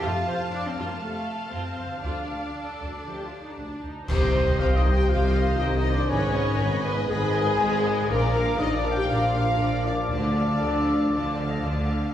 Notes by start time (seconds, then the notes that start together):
Already playing: F3 C4 A4 C5 A5
0.00 F2 C3 A3 F4 F5
0.26 F2 C5
0.50 D4 D5
0.66 C4 C5
0.76 F2 F4
0.83 A#3 A#4
0.99 C3 A3 A4
1.51 F2 C4 F4 C5
1.77 F2 C5
1.84 D3
1.89 F4 A4
1.98 D5
2.03 D2 F3 A3 D4 F4 D5 A5
2.29 D2 D5
2.56 A4
2.81 D2
3.06 F3 A3 G4
3.25 F4
3.41 D#4
3.58 D2 D4
3.83 D2 D#4
4.07 C2 C3 D#3 C4 C5 D#5 G5, concert bass drum, crash
4.34 C5 D#5 C6
4.58 C2 C3 F4 C5 D#5 F5 G5
4.74 D#4 D#5
4.85 D#4 C5 D#5 C6
4.91 G4 G5
5.09 C2 C3 G3 F4 C5 D#5 F5 G5
5.35 C5 D#5 C6
5.59 C2 C3 D#4 C5 D#5 G5
5.74 D#4 D#5
5.85 C5 D#5 C6
5.91 D4 D5
6.08 G#1 G#2 B3 C#4 B4 C#5 D#5 B5
6.34 B4 D#5 G#5
6.59 G#1 G#2 B4 D#5 B5
6.83 B3 D#4 B4 D#5 G#5
7.07 G#1 G#2 D#3 G#3 G#4 B4 D#5 B5
7.32 D#4 B4 D#5 G#5
7.58 G#1 G#2 B4 D#5 B5
7.83 B4 D#5 G#5
8.07 A#1 A#2 F3 A#3 D4 F4 A#4 D5 A#5
8.34 A#4 F5 D6
8.58 A#1 A#2 D#4 F4 D5 D#5 A#5
8.74 D4 D5
8.84 A#3 A#4 F5 D6
8.90 G4 G5
9.08 A#1 A#2 F3 F4 D5 F5 A#5
9.34 A#3 A#4 F5 D6
9.58 A#1 A#2 F4 D5 A#5
9.85 A#3 D4 A#4 D5 F5 D6
10.10 D2 D3 D4 F4 D5 F5 A5
10.35 A4 F5 A5
10.60 D2 D3 F4 A4 D5 F5 A5
10.88 A4 F5 A5
11.12 D2 D3 F4 D5 F5 A5
11.31 C5
11.38 A4 F5 A5
11.49 D#5
11.63 D2 D3 F4 D5 F5 A5
11.90 A4 F5 A5